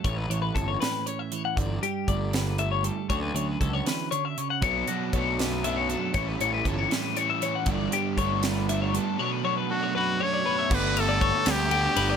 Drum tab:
CC |------|------|------|------|
RD |------|------|------|------|
HH |xxxxxx|xxxxxx|xxxxxx|xxxxxx|
SD |---o--|---o--|---o--|---o--|
BD |o-o---|o-o---|o-o---|o-o---|

CC |------|------|------|x-----|
RD |------|------|------|-xxxxx|
HH |xxxxxx|xxxxxx|------|------|
SD |---o--|---o--|------|---o--|
BD |o-o---|o-o---|------|o-o---|